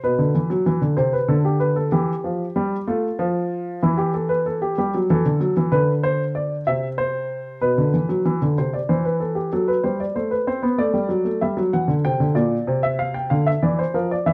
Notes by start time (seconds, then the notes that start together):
0.04 B2 B4
0.19 D3
0.35 E3
0.50 F#3
0.66 E3
0.81 D3
0.97 C3 C5
1.13 B4
1.28 D3 A4
1.45 G4
1.60 B4
1.76 A4
1.92 E3 G4
2.24 F3
2.56 G3
2.87 A3 F4
3.19 F3
3.83 E3 E4
3.98 G4
4.14 A4
4.29 B4
4.46 A4
4.62 G4
4.78 G3 G4
4.95 F#3
5.10 E3 A4
5.25 D3
5.41 F#3
5.57 E3
5.72 D3 B4
6.03 C5
6.35 D5
6.67 C3 E5
6.98 C5
7.61 B2 B4
7.78 D3
7.94 E3
8.09 F#3
8.25 E3
8.42 D3
8.58 C3 C5
8.73 D5
8.89 E3 C5
9.05 B4
9.20 A4
9.35 G4
9.53 F#3 A4
9.68 B4
9.84 G3 C5
10.00 D5
10.15 A3 C5
10.31 B4
10.47 C4 C5
10.63 B3
10.78 A3 D5
10.93 G3
11.09 F#3
11.25 A3
11.41 G3 E5
11.57 F#3
11.73 E3 F#5
11.88 D3
12.05 C3 G5
12.20 D3
12.35 A#2 D5
12.67 C3
12.83 E5
12.99 F5
13.14 G5
13.30 D3 F5
13.46 E5
13.62 E3 D5
13.79 C5
13.94 F3 A#4
14.11 D5
14.26 E3 E5